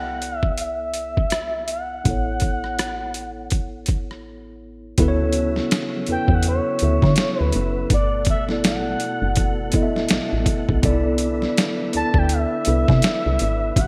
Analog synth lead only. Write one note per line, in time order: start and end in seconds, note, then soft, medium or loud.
0.00 0.38 F#5 medium
0.38 0.62 E5 medium
0.62 1.70 E5 medium
1.72 4.22 F#5 medium
6.12 6.36 G5 loud
6.34 6.47 F#5 medium
6.48 7.42 C#5 loud
7.42 7.89 B4 loud
7.94 8.26 D5 medium
8.30 8.44 E5 loud
8.67 10.08 F#5 loud
11.96 12.20 A5 loud
12.18 12.34 G5 loud
12.33 13.81 E5 loud
13.80 13.87 F#5 medium